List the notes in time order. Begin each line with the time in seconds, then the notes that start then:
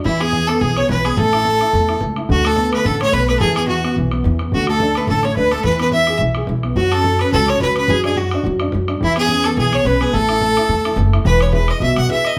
0.04 E2 E3 E4, bodhran
0.21 B3 G#4, bodhran
0.32 E3, bodhran
0.48 B3 A4, bodhran
0.61 B1 E3 G#4, bodhran
0.69 bodhran
0.76 B3 C#5, bodhran
0.83 bodhran
0.89 B1 E3 B4, bodhran
1.05 B3 G#4, bodhran
1.17 A1 A3 A4, bodhran
1.33 E4, bodhran
1.45 A3, bodhran
1.61 E4, bodhran
1.73 E2 A3, bodhran
1.81 bodhran
1.88 E4, bodhran
1.95 bodhran
2.01 C#2 A3, bodhran
2.16 E4, bodhran
2.29 D2 D3 F#4, bodhran
2.44 A3 A4, bodhran
2.56 B3, bodhran
2.72 A3 B4, bodhran
2.84 A1 D3 A4, bodhran
2.93 bodhran
3.00 A3 C#5, bodhran
3.07 bodhran
3.12 B1 B3 B4, bodhran
3.28 A3 B4, bodhran
3.38 E2 E3 F#4 G#4 A4, bodhran
3.56 B3 G#4, bodhran
3.68 E3 F#4, bodhran
3.84 B3, bodhran
3.96 B1 E3, bodhran
4.05 bodhran
4.11 B3, bodhran
4.18 bodhran
4.24 E2 E3, bodhran
4.39 B3, bodhran
4.52 D2 D3 F#4, bodhran
4.67 A3 A4, bodhran
4.80 D4, bodhran
4.95 A3 B4, bodhran
5.07 A1 D3 A4, bodhran
5.15 bodhran
5.23 A3 C#5, bodhran
5.30 bodhran
5.36 D2 D4 B4, bodhran
5.51 A3 A4, bodhran
5.64 E2 E3 B4, bodhran
5.79 B3 B4, bodhran
5.92 E4 E5, bodhran
6.07 G#4, bodhran
6.19 B1 E4, bodhran
6.27 bodhran
6.35 G#4, bodhran
6.41 bodhran
6.47 B1 E4, bodhran
6.63 B3, bodhran
6.76 F#2 F#3 F#4, bodhran
6.92 C#4 A4, bodhran
7.04 F#3, bodhran
7.19 C#4 B4, bodhran
7.32 C#2 F#3 A4, bodhran
7.41 bodhran
7.46 C#4 C#5 D5, bodhran
7.55 bodhran
7.60 C#2 F#3 B4, bodhran
7.76 C#4 B4, bodhran
7.88 F#2 F#3 G#4, bodhran
8.04 D4 G#4, bodhran
8.16 F#3 F#4, bodhran
8.31 D4 F#4, bodhran
8.43 F#2 F#3, bodhran
8.51 bodhran
8.60 D4, bodhran
8.66 bodhran
8.72 F#2 F#3, bodhran
8.88 D4, bodhran
9.01 E2 E3 E4, bodhran
9.16 B3 G#4, bodhran
9.28 C#4, bodhran
9.44 B3 A4, bodhran
9.57 B1 E3 G#4, bodhran
9.65 bodhran
9.72 B3 C#5, bodhran
9.79 bodhran
9.83 B1 C#4 B4, bodhran
9.99 B3 G#4, bodhran
10.12 A1 A3 A4, bodhran
10.28 E4, bodhran
10.41 A3, bodhran
10.57 E4, bodhran
10.69 E2 A3, bodhran
10.85 E4, bodhran
10.92 bodhran
10.96 F#1 A3, bodhran
11.12 E4, bodhran
11.25 E1 E3 B4, bodhran
11.40 C#5, bodhran
11.53 E4 G#4 B4, bodhran
11.68 D#5, bodhran
11.80 B1 B2 E5, bodhran
11.96 B1 F#5, bodhran
12.09 E4 G#4 B4 E5, bodhran
12.25 D#5, bodhran